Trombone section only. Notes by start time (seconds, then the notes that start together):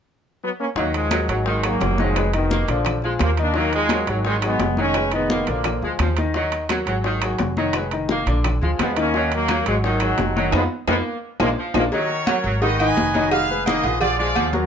0.43 F#3 B3
0.60 A#3 C#4
0.77 F#3 A#3
0.94 F3 G#3
1.30 D#3 F#3
1.48 D#3 G#3
1.64 F#3 A#3
2.00 F3 G#3
2.35 B2 D#3
2.69 D3 F3
3.21 F3 A#3
3.40 A#3 D4
3.56 F#3 A#3
3.74 F3 G#3
4.09 D#3 F#3
4.28 D#3 G#3
4.45 G#3 B3
4.79 G#3 C#4
5.14 G#3 B3
5.49 F3 A#3
8.81 G#3 B3
8.98 A#3 C#4
9.33 F#3 A#3
9.68 F3 G#3
9.85 D#3 F#3
10.54 F3 G#3 B3
10.88 F3 G#3 B3
11.41 F3 G#3 A#3
11.76 F3 G#3 A#3